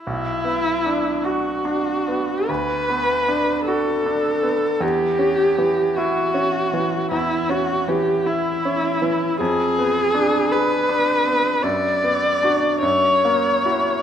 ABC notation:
X:1
M:12/8
L:1/8
Q:3/8=52
K:Bm
V:1 name="Viola"
E3 F3 B3 A3 | G3 F3 E F G E3 | _A3 _c3 d3 ^c3 |]
V:2 name="Grand piano"
B,,, B, D F D B, D,, B, D F D B, | E,, C E, E C E, E,, C E, E C E, | =F,, _C D _A D C ^F,, B, [DF] F,, ^A, [EF] |]